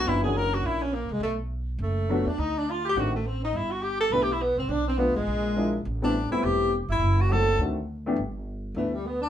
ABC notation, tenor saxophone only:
X:1
M:4/4
L:1/8
Q:"Swing" 1/4=207
K:Dmix
V:1 name="Tenor saxophone"
E ^G ^A F E ^C ^A, ^G, | A, z3 A,3 D | _E D =F G ^F A, C E | E F G A (3B G E B, C |
D C B, ^G,4- G, | z D2 E G2 z E- | E F A2 z4 | [K:G] z4 E, G, B, D |]